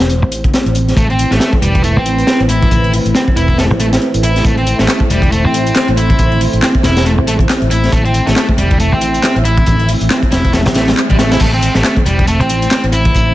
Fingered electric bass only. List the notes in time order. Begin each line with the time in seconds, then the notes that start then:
Already playing: E1
0.22 A1
0.66 A1
0.97 A1
1.31 A1
1.62 E1
1.97 A1
2.40 A1
2.71 A1
3.05 A1
3.36 E1
3.71 A1
4.14 A1
4.45 A1
4.79 A1
5.10 E1
5.45 A1
5.88 A1
6.19 A1
6.53 A1
6.84 E1
7.18 A1
7.62 A1
7.92 A1
8.27 A1
8.58 E1
8.92 A1
9.36 A1
9.67 A1
10.01 A1
10.32 E1
10.66 A1
11.11 A1
11.40 A1
11.75 A1
12.06 E1
12.40 A1
12.84 A1
13.15 A1